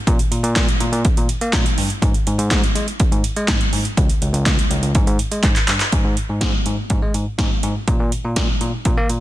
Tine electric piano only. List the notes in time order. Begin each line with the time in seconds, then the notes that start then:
0.07 A#2
0.31 A#2
0.43 A#2
0.56 A#2
0.80 A#2
0.92 A#2
1.17 A#2
1.41 A#3
1.53 A#2
1.78 G2
2.02 G#2
2.27 G#2
2.39 G#2
2.51 G#2
2.75 G#3
3.12 G#2
3.36 G#3
3.48 G#2
3.73 G#2
3.97 C#2
4.22 C#2
4.34 C#2
4.46 C#2
4.70 C#2
4.83 C#2
4.95 G#2
5.07 G#2
5.31 G#3
5.43 G#2
5.68 G2
5.92 G#2
6.05 G#2
6.29 G#2
6.41 G#2
6.66 G#2
6.90 G#2
7.02 G#3
7.14 G#2
7.38 G#2
7.63 G#2
7.88 A#2
8.00 A#2
8.24 A#2
8.36 A#2
8.61 A#2
8.85 A#2
8.97 A#3
9.10 A#2